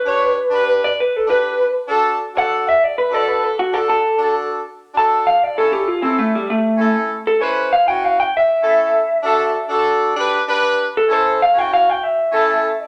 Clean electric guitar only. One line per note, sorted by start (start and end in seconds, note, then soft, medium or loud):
0.00 0.79 B4 medium
0.84 0.98 D5 medium
1.00 1.16 B4 medium
1.16 1.29 A4 medium
1.30 1.74 B4 medium
2.38 2.66 F#5 loud
2.69 2.84 E5 medium
2.84 2.97 D5 medium
2.98 3.14 B4 medium
3.14 3.28 D5 medium
3.28 3.44 B4 medium
3.44 3.58 A4 loud
3.59 3.74 F#4 medium
3.74 3.88 A4 medium
3.89 4.33 A4 loud
4.97 5.26 A5 loud
5.27 5.43 F5 medium
5.43 5.57 D5 medium
5.58 5.72 A4 loud
5.73 5.87 G4 medium
5.87 6.02 F4 medium
6.02 6.17 C4 medium
6.19 6.33 A3 medium
6.35 6.49 G3 medium
6.50 6.94 A3 loud
7.27 7.42 A4 loud
7.42 7.71 C5 medium
7.73 7.87 F5 medium
7.88 8.05 G5 medium
8.05 8.18 F5 medium
8.20 8.33 G5 medium
8.37 9.69 E5 loud
10.97 11.12 A4 medium
11.12 11.40 C5 medium
11.42 11.59 F5 medium
11.59 11.71 G5 medium
11.73 11.89 F5 loud
11.89 12.03 G5 loud
12.03 12.87 E5 loud